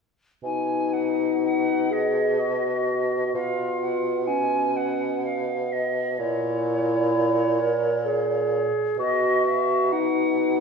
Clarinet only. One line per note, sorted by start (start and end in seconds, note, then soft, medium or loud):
0.45 1.92 D#4 soft
1.91 2.41 G#4 soft
2.39 3.26 F#4 soft
3.26 3.36 F#4 soft
3.35 4.30 F4 soft
4.29 5.72 C#4 soft
6.19 7.62 E4 soft
7.60 8.07 A#4 soft
8.06 8.99 G#4 soft
8.99 9.94 F#4 soft
9.93 10.60 D#4 soft